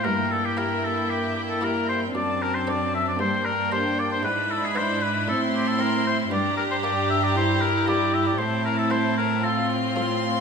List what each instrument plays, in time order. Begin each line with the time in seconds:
0.04 cello section G2, harpsichord G2, viola section A#3, violin section E4 G5, oboe A#4
0.31 oboe A4
0.45 oboe G4
0.57 harpsichord A#3 E4 G4, oboe A#4
0.84 oboe A4
1.09 oboe G4
1.36 oboe G4
1.49 oboe A4
1.61 harpsichord A#3 E4 G4, oboe A#4
1.89 oboe C5
2.14 cello section F#2, harpsichord F#2, viola section C4, violin section D4 A5, oboe D5
2.42 oboe A#4
2.55 oboe C5
2.67 harpsichord C4 D4 A4, oboe D5
2.94 oboe E5
3.07 oboe D5
3.19 harpsichord G2, cello section G2, viola section A#3, oboe C5, violin section G5
3.45 oboe A#4
3.72 harpsichord D4 G4, oboe C5
3.99 oboe D5
4.12 oboe C5
4.23 harpsichord G#2, cello section G#2, viola section D4, violin section E4 B5, oboe B4
4.51 oboe A4
4.64 oboe G#4
4.75 harpsichord B3 D4 E4, oboe C5
5.02 oboe B4
5.27 harpsichord A2, cello section A2, viola section C4, oboe A4, violin section C6
5.55 oboe G4
5.67 oboe A4
5.79 harpsichord C4 E4, oboe A#4
6.06 oboe C5
6.31 cello section G2, harpsichord G2, viola section D4, violin section G4 A#5, oboe D5
6.57 oboe A#4
6.70 oboe C5
6.83 harpsichord A#3 D4 G4, oboe D5
7.10 oboe E5
7.23 oboe D5
7.35 viola section E4, oboe C5
7.61 oboe A#4
7.88 harpsichord A#3 E4 G4, oboe D5
8.14 oboe E5
8.26 oboe D5
8.38 harpsichord A2, cello section A2, viola section C4, violin section E4 A5, oboe C5
8.65 oboe A#4
8.78 oboe A4
8.90 harpsichord A3 C4 E4, oboe C5
9.17 oboe A#4
9.43 violin section F4 C6, oboe A4
9.96 harpsichord A3 C4 F4